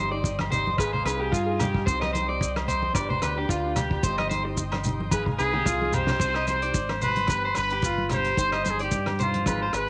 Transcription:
Already playing: fingered electric bass G1, nylon-string guitar G3 C4, clean electric guitar C5, transistor combo organ C5 D#5 G5
0.00 nylon-string guitar D#4 G4
0.11 nylon-string guitar C4 D#4 G4, clean electric guitar D5
0.24 kick, maracas
0.39 cross-stick, high conga, low agogo
0.50 nylon-string guitar G3 C4 D#4 G4, clean electric guitar C5, closed hi-hat, low conga, maracas
0.67 high conga
0.77 fingered electric bass G#1, nylon-string guitar C4 D#4 G#4, clean electric guitar B4, transistor combo organ F5 G#5, kick, cross-stick, low agogo, maracas
0.93 clean electric guitar C5, low conga
1.04 fingered electric bass C2, nylon-string guitar C4 D#4 G#4, clean electric guitar B4, cross-stick, closed hi-hat, low agogo, maracas
1.19 clean electric guitar G4, nylon-string guitar G#4
1.32 fingered electric bass G2, clean electric guitar F4, kick, maracas
1.46 nylon-string guitar D#4 G#4
1.60 clean electric guitar G4, cross-stick, closed hi-hat, high conga, low conga, low agogo, maracas
1.75 kick
1.86 fingered electric bass C2, nylon-string guitar G3 C4 D#4 G4, clean electric guitar C5, transistor combo organ C5 G5, kick, maracas
2.01 clean electric guitar D#5, cross-stick, high conga, low agogo
2.13 nylon-string guitar G3 C4 D#4 G4, clean electric guitar C5, closed hi-hat, high conga, maracas
2.29 nylon-string guitar C4 G4, clean electric guitar D5
2.41 kick, maracas
2.56 cross-stick, high conga, low agogo
2.65 nylon-string guitar G3 C4 G4, clean electric guitar C5, closed hi-hat, low conga
2.69 maracas
2.82 high conga
2.93 fingered electric bass G1, nylon-string guitar B3 D4 G4, transistor combo organ B4 D5, clean electric guitar D5, kick, cross-stick, low agogo, maracas
3.10 clean electric guitar C5, low conga
3.22 fingered electric bass D2, nylon-string guitar B3 D4 G4, clean electric guitar B4, cross-stick, closed hi-hat, low agogo, maracas
3.36 nylon-string guitar D4 G4, clean electric guitar G4
3.49 fingered electric bass D2, clean electric guitar F4, kick, maracas
3.63 nylon-string guitar D4 G4
3.76 clean electric guitar G4, cross-stick, closed hi-hat, high conga, low conga, low agogo, maracas
3.91 kick
4.02 fingered electric bass G1, nylon-string guitar G3 C4 G4, clean electric guitar C5, transistor combo organ C5 D#5, muted nylon-string guitar stroke, kick, maracas
4.18 clean electric guitar D#5, cross-stick, high conga, low agogo
4.29 nylon-string guitar G3 C4 D#4 G4, clean electric guitar C5, closed hi-hat, high conga, maracas
4.44 nylon-string guitar C4 D#4 G4, muted clean electric guitar stroke
4.57 kick, maracas
4.72 cross-stick, high conga, low agogo
4.84 nylon-string guitar G3 C4 D#4 G4, closed hi-hat, low conga, maracas
5.00 high conga
5.11 fingered electric bass G#1, nylon-string guitar C4 D#4 G#4, clean electric guitar B4, transistor combo organ F5 G#5, kick, high tom, low agogo, maracas
5.26 muted clean electric guitar stroke, kick, low conga
5.38 fingered electric bass C2, nylon-string guitar C4 D#4 G#4, trumpet G#4, clean electric guitar B4, low agogo, maracas
5.53 clean electric guitar G4, nylon-string guitar G#4, mid tom
5.66 fingered electric bass C2, clean electric guitar F4, kick, mid tom, maracas
5.81 nylon-string guitar D#4 G#4, high conga
5.92 clean electric guitar G4, trumpet C5, floor tom, low conga, low agogo, maracas
6.07 snare, low conga
6.19 fingered electric bass C2, nylon-string guitar G3 C4 D#4 G4, clean electric guitar C5, kick, crash, maracas
6.34 clean electric guitar D#5, cross-stick, low agogo
6.47 nylon-string guitar G3 C4 D#4 G4, clean electric guitar C5, trumpet C5, closed hi-hat, high conga, maracas
6.62 nylon-string guitar D#4 G4, clean electric guitar D5, closed hi-hat
6.74 fingered electric bass G#1, kick, closed hi-hat, maracas
6.89 cross-stick, high conga, low agogo
7.01 nylon-string guitar G3 C4 D#4, trumpet B4, clean electric guitar C5, closed hi-hat, low conga, maracas
7.05 nylon-string guitar G4
7.16 closed hi-hat, high conga
7.27 fingered electric bass G1, nylon-string guitar G3 B3 D4, clean electric guitar B4, kick, cross-stick, closed hi-hat, high conga, low agogo, maracas
7.31 nylon-string guitar G4
7.45 clean electric guitar C5
7.55 fingered electric bass G1, nylon-string guitar G3 B3, clean electric guitar B4, trumpet B4, cross-stick, closed hi-hat, low agogo, maracas
7.59 nylon-string guitar D4, muted nylon-string guitar stroke
7.70 clean electric guitar G4, closed hi-hat
7.82 clean electric guitar F4, kick, closed hi-hat, low conga, maracas
7.98 high conga
8.09 nylon-string guitar G3 B3 D4 G4, clean electric guitar G4, cross-stick, closed hi-hat, low conga, low agogo, maracas
8.14 trumpet C5
8.24 closed hi-hat
8.36 fingered electric bass G1, nylon-string guitar G3 C4 D#4 G4, clean electric guitar C5, kick, closed hi-hat, maracas
8.52 clean electric guitar D#5, cross-stick, low agogo
8.64 nylon-string guitar G3 C4 D#4 G4, clean electric guitar C5, closed hi-hat, high conga, maracas
8.70 trumpet G#4
8.79 nylon-string guitar D#4 G4, clean electric guitar D5, closed hi-hat
8.83 nylon-string guitar C4, trumpet G4
8.91 fingered electric bass G2, kick, closed hi-hat, maracas
9.06 cross-stick, high conga, low agogo
9.19 nylon-string guitar G3 C4 D#4 G4, clean electric guitar C5, closed hi-hat, low conga, maracas
9.23 trumpet F4
9.34 closed hi-hat, high conga
9.46 fingered electric bass G#1, nylon-string guitar C4 D#4 G#4, clean electric guitar B4, kick, cross-stick, closed hi-hat, high conga, low agogo, maracas
9.63 clean electric guitar C5
9.73 fingered electric bass G#1, nylon-string guitar C4 D#4 G#4, clean electric guitar B4, trumpet B4, cross-stick, closed hi-hat, low agogo, maracas

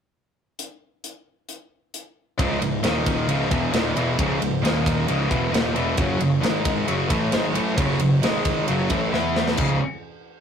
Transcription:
0.59 closed hi-hat
1.04 closed hi-hat
1.49 closed hi-hat
1.94 closed hi-hat
2.38 picked electric bass C#1, distorted electric guitar C#2 G#2 C#3, kick, ride
2.61 picked electric bass C#1, distorted electric guitar C#2 G#2, ride
2.83 picked electric bass D#1, distorted electric guitar D#2 A#2 D#3, snare, ride
3.06 kick, ride
3.28 picked electric bass C#1, distorted electric guitar C#2 G#2 C#3, ride
3.50 picked electric bass E1, distorted electric guitar E2 B2 E3, kick, ride
3.72 picked electric bass D#1, distorted electric guitar D#2 A#2 D#3, snare, ride
3.95 picked electric bass E1, distorted electric guitar E2 B2 E3, ride
4.17 picked electric bass C#1, distorted electric guitar C#2 G#2 C#3, kick, ride
4.41 picked electric bass C#1, distorted electric guitar C#2 G#2, ride
4.63 picked electric bass D#1, distorted electric guitar D#2 A#2 D#3, snare, ride
4.86 kick, ride
5.07 picked electric bass C#1, distorted electric guitar C#2 G#2 C#3, ride
5.30 picked electric bass E1, distorted electric guitar E2 B2 E3, kick, ride
5.51 picked electric bass D#1, distorted electric guitar D#2 A#2 D#3, ride
5.55 snare
5.74 picked electric bass E1, distorted electric guitar E2 B2 E3, ride
5.97 picked electric bass F#1, distorted electric guitar F#2 C#3 F#3, string section F#3 C#4 C#5, kick, ride
6.20 picked electric bass F#1, distorted electric guitar F#2 C#3, ride
6.41 picked electric bass G#1, distorted electric guitar G#2 D#3 G#3, snare, ride
6.46 string section G#3 D#4 D#5
6.65 kick, ride
6.87 picked electric bass F#1, distorted electric guitar F#2 C#3 F#3, ride
6.91 string section F#3 C#4 C#5
7.09 picked electric bass A1, distorted electric guitar A2 E3 A3, kick, ride
7.31 picked electric bass G#1, distorted electric guitar G#2 D#3 G#3, snare, ride
7.55 picked electric bass A1, distorted electric guitar A2 E3 A3, ride
7.78 picked electric bass F#1, distorted electric guitar F#2 C#3 F#3, kick, ride
7.99 picked electric bass F#1, distorted electric guitar F#2 C#3, ride
8.23 picked electric bass G#1, distorted electric guitar G#2 D#3 G#3, string section G#3 D#4 D#5, snare, ride
8.45 kick, ride
8.67 picked electric bass F#1, distorted electric guitar F#2 C#3 F#3, string section F#3 C#4 C#5, ride
8.90 picked electric bass A1, distorted electric guitar A2 E3 A3, kick, ride
9.12 picked electric bass E2, distorted electric guitar E3 B3 E4, string section E3 B3 B4, snare
9.36 snare
9.47 snare
9.57 picked electric bass C#1, distorted electric guitar C#2 G#2 C#3, string section E3 C#4 G#4, kick, crash

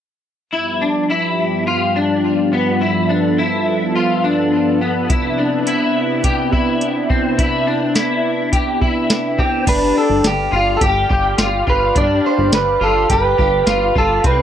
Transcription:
0.53 analog synth pad G2 F3 B3 G4, clean electric guitar E4
0.81 clean electric guitar D4
1.10 clean electric guitar E4
1.67 clean electric guitar F4
1.96 clean electric guitar D4
2.53 clean electric guitar B3
2.81 clean electric guitar E4, analog synth pad A4
3.09 clean electric guitar D4
3.38 clean electric guitar E4
3.96 clean electric guitar F4
4.24 clean electric guitar D4
4.81 clean electric guitar B3
5.10 analog synth pad C3 D4 E4, clean electric guitar E4, kick, closed hi-hat
5.38 clean electric guitar D4
5.67 clean electric guitar E4, closed hi-hat
6.24 clean electric guitar G4, kick, closed hi-hat
6.52 clean electric guitar E4, kick
6.81 closed hi-hat
7.10 clean electric guitar C4, kick
7.38 clean electric guitar E4, kick, closed hi-hat
7.67 clean electric guitar D4
7.95 clean electric guitar E4, snare, closed hi-hat
8.53 clean electric guitar G4, kick, closed hi-hat
8.81 clean electric guitar E4, kick
9.10 snare, closed hi-hat
9.38 clean electric guitar C4 G4, kick
9.67 analog synth bass G1, clean electric guitar D4 B4, analog synth pad G4 D5 F5 B5, kick, closed hi-hat, crash
9.98 clean electric guitar A4
10.10 analog synth bass G1
10.24 analog synth bass G1, clean electric guitar G4, snare, closed hi-hat
10.52 analog synth bass G1, clean electric guitar F4
10.77 clean electric guitar A4
10.81 analog synth bass G1, clean electric guitar G4, kick, closed hi-hat
11.09 analog synth bass G1, clean electric guitar G4, kick
11.38 analog synth bass G1, clean electric guitar F4, snare, closed hi-hat
11.67 analog synth bass G1, clean electric guitar F4 B4, kick
11.95 analog synth bass G1, clean electric guitar D4 D5, kick, closed hi-hat
12.26 clean electric guitar C5
12.38 analog synth bass G1
12.52 analog synth bass G1, clean electric guitar B4, snare, closed hi-hat
12.81 analog synth bass G1, clean electric guitar F4 A4
13.10 analog synth bass G1, clean electric guitar G4 B4, kick, closed hi-hat
13.38 analog synth bass G1, clean electric guitar G4, kick
13.67 analog synth bass G1, clean electric guitar F4, snare, closed hi-hat
13.95 analog synth bass G1, clean electric guitar F4 A4, kick
14.24 analog synth bass C2, clean electric guitar C4 B4, analog synth pad C5 E5 D6, kick, closed hi-hat

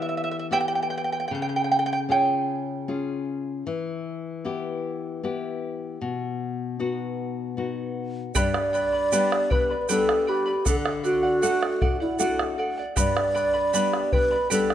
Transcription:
Already playing: nylon-string guitar E3 B3 E4 G4
0.02 charango E5
0.09 charango E5
0.17 charango E5
0.24 charango E5
0.31 charango E5
0.39 charango E5
0.51 nylon-string guitar B3 E4 G4, charango E5 G5
0.68 charango G5
0.75 charango G5
0.83 charango G5
0.90 charango G5
0.98 charango G5
1.04 charango G5
1.12 charango G5
1.20 charango G5
1.28 nylon-string guitar C#3, charango G5
1.35 charango G5
1.42 charango G5
1.49 charango G5
1.56 charango G5
1.64 charango G5
1.72 charango G5
1.79 charango G5
1.86 charango G5
1.93 charango G5
2.09 nylon-string guitar C#4 F4 G#4, charango C#5 G5
2.88 nylon-string guitar C#4 F4 G#4
3.67 nylon-string guitar E3
4.45 nylon-string guitar B3 E4 G4
5.23 nylon-string guitar B3 E4 G4
6.01 nylon-string guitar B2
6.79 nylon-string guitar B3 D#4 F#4
7.57 nylon-string guitar B3 D#4 F#4
8.35 nylon-string guitar G2, charango G4 B4 D5 G5 B5, alto flute D5, bombo rim, bombo low, shaker
8.54 bombo rim
8.73 charango B4 D5 G5 B5, shaker
8.92 charango B4 D5 B5
9.12 nylon-string guitar G3 B3 D4, charango G4 B4 D5 G5 B5, shaker
9.32 bombo rim
9.50 charango B4 D5 G5 B5, alto flute B4, bombo low
9.70 charango B4 D5 B5
9.81 alto flute B4
9.89 nylon-string guitar G3 B3 D4, charango G4 B4 D5 G5 B5, alto flute A4, shaker
10.09 bombo rim
10.27 alto flute G4, charango B4 D5 G5 B5
10.46 charango B4 D5 B5
10.65 nylon-string guitar D3, charango A4 D5 F#5, alto flute A4, bombo rim, bombo low, shaker
10.86 bombo rim
11.04 alto flute F#4, charango A4 D5 F#5, shaker
11.23 charango D5 F#5
11.42 nylon-string guitar A3 D4 F#4, charango A4 D5 F#5, shaker
11.63 bombo rim
11.81 charango A4 D5 F#5, bombo low
12.00 alto flute E4, charango D5 F#5
12.19 nylon-string guitar A3 D4 F#4, charango A4 D5 F#5, shaker
12.39 bombo rim
12.58 charango A4 D5 F#5
12.78 charango D5 F#5
12.96 nylon-string guitar G2, charango G4 B4 D5 G5 B5, alto flute D5, bombo rim, bombo low, shaker
13.17 bombo rim
13.34 charango B4 D5 G5 B5, shaker
13.54 charango B4 D5 B5
13.73 nylon-string guitar G3 B3 D4, charango G4 B4 D5 G5 B5, shaker
13.93 bombo rim
14.12 alto flute B4, charango B4 D5 G5 B5, bombo low
14.31 charango B4 D5 B5
14.50 nylon-string guitar G3 B3 D4, charango G4 B4 D5 G5 B5, alto flute A4, shaker
14.70 bombo rim

